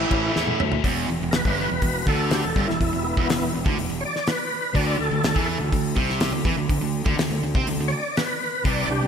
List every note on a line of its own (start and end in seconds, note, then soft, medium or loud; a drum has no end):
0.00 0.12 A2 medium
0.00 0.59 A2 medium
0.00 0.12 E3 medium
0.00 0.60 E3 medium
0.00 0.11 A3 medium
0.00 0.60 A3 medium
0.00 0.11 C#4 medium
0.00 0.60 C#4 medium
0.00 0.10 E4 medium
0.00 0.32 E4 medium
0.00 0.61 E4 medium
0.10 0.28 A1 medium
0.10 0.62 A2 medium
0.10 0.34 E3 medium
0.10 0.35 A3 medium
0.10 0.35 C#4 medium
0.10 0.36 E4 medium
0.10 kick medium
0.10 cowbell medium
0.10 crash medium
0.36 0.54 E2 loud
0.36 0.84 E3 medium
0.36 0.60 A3 medium
0.36 0.59 C#4 medium
0.36 0.58 E4 medium
0.36 snare medium
0.47 high tom medium
0.59 0.78 D2 medium
0.59 0.84 A3 medium
0.59 0.84 C#4 medium
0.59 0.83 E4 medium
0.59 mid tom medium
0.59 cowbell medium
0.72 floor tom loud
0.84 1.07 E1 medium
0.84 1.08 E2 medium
0.84 kick medium
0.84 open hi-hat soft
1.09 1.21 E1 medium
1.09 1.19 E2 medium
1.20 1.33 E1 medium
1.20 1.32 E2 medium
1.31 1.44 E1 medium
1.31 1.46 E2 medium
1.31 1.34 A#4 medium
1.31 snare loud
1.31 open hi-hat soft
1.36 2.06 B4 medium
1.44 1.68 G1 medium
1.44 1.70 G2 medium
1.44 kick loud
1.71 1.81 E1 medium
1.71 1.83 E2 medium
1.82 2.05 E1 medium
1.82 2.03 E2 medium
1.82 kick medium
1.82 open hi-hat medium
2.06 2.41 D2 medium
2.06 2.43 D3 medium
2.06 2.31 A4 medium
2.06 kick medium
2.31 2.43 G4 medium
2.31 snare loud
2.31 open hi-hat medium
2.43 2.55 E1 medium
2.43 2.56 E2 medium
2.43 2.67 A4 medium
2.56 2.67 G1 medium
2.56 2.68 G2 loud
2.56 kick medium
2.68 2.79 E1 medium
2.68 2.79 E2 medium
2.68 3.03 E4 medium
2.68 snare soft
2.80 2.92 E1 medium
2.80 2.92 E2 medium
2.80 kick medium
2.80 open hi-hat medium
2.93 3.17 E1 medium
2.93 3.12 E2 medium
3.04 3.50 B3 medium
3.04 3.52 E4 medium
3.16 3.29 E1 medium
3.16 3.28 E2 medium
3.16 kick medium
3.29 3.41 E1 medium
3.29 3.40 E2 medium
3.29 snare loud
3.29 open hi-hat medium
3.41 3.53 E1 medium
3.41 3.52 E2 medium
3.53 3.65 E1 medium
3.53 3.66 E2 medium
3.65 3.77 D2 medium
3.65 3.77 D3 medium
3.65 kick loud
3.77 3.90 E1 medium
3.77 3.88 E2 medium
3.77 open hi-hat medium
3.89 4.02 E1 medium
3.89 4.02 E2 medium
4.01 4.04 C#5 medium
4.05 4.28 D5 medium
4.16 snare soft
4.27 4.75 B4 loud
4.27 snare loud
4.27 open hi-hat medium
4.74 4.98 D2 medium
4.74 4.98 D3 loud
4.74 4.99 D5 medium
4.74 kick medium
4.74 open hi-hat soft
4.99 5.11 D2 medium
4.99 5.09 D3 medium
4.99 5.48 A4 loud
5.11 5.23 D2 medium
5.11 5.22 D3 medium
5.23 5.35 D2 medium
5.23 5.34 D3 medium
5.23 snare loud
5.23 open hi-hat medium
5.34 5.59 E2 medium
5.34 5.59 E3 loud
5.34 kick medium
5.59 5.72 D2 medium
5.59 5.71 D3 medium
5.72 5.95 D2 medium
5.72 5.92 D3 medium
5.72 kick medium
5.72 open hi-hat medium
5.96 6.31 C2 medium
5.96 6.33 C3 loud
5.96 kick medium
6.10 snare soft
6.20 snare loud
6.20 open hi-hat medium
6.31 6.44 D2 medium
6.31 6.46 D3 medium
6.45 6.56 E2 loud
6.45 6.57 E3 loud
6.45 kick medium
6.56 6.69 D2 medium
6.56 6.69 D3 medium
6.69 6.81 D2 medium
6.69 6.82 D3 medium
6.69 kick medium
6.69 open hi-hat medium
6.81 7.05 D2 medium
6.81 7.03 D3 medium
7.05 7.17 D2 medium
7.05 7.18 D3 medium
7.05 kick loud
7.17 7.30 D2 medium
7.17 7.31 D3 medium
7.17 snare loud
7.17 open hi-hat medium
7.30 7.42 D2 medium
7.30 7.43 D3 medium
7.43 7.55 D2 medium
7.43 7.56 D3 medium
7.55 7.65 C3 medium
7.55 7.67 C4 medium
7.55 kick loud
7.66 7.76 D2 medium
7.66 7.79 D3 medium
7.66 open hi-hat medium
7.77 7.90 D2 medium
7.77 7.93 D3 medium
7.88 7.91 C#5 medium
7.92 8.16 D5 medium
8.17 8.64 B4 medium
8.17 snare loud
8.17 open hi-hat medium
8.64 8.87 C2 medium
8.64 8.88 C3 medium
8.64 8.90 D5 medium
8.64 kick loud
8.64 open hi-hat soft
8.88 9.00 C2 medium
8.88 9.01 C3 medium
8.88 9.07 D4 medium
8.88 9.07 G4 loud
9.01 9.07 C2 medium
9.01 9.07 C3 medium